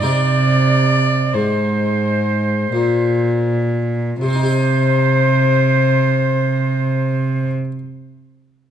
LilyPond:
<<
  \new Staff \with { instrumentName = "Oboe" } { \time 3/4 \key c \minor \tempo 4 = 40 d''4 c''4. r8 | c''2. | }
  \new Staff \with { instrumentName = "Violin" } { \time 3/4 \key c \minor d''4 c''4. r8 | c''2. | }
  \new Staff \with { instrumentName = "Harpsichord" } { \time 3/4 \key c \minor <c' ees' g'>2. | <c c' ees' g' ees''>2. | }
  \new Staff \with { instrumentName = "Harpsichord" } { \clef bass \time 3/4 \key c \minor c4 aes,4 bes,4 | r2. | }
  \new Staff \with { instrumentName = "Cello" } { \clef bass \time 3/4 \key c \minor c4 aes,4 bes,4 | c2. | }
>>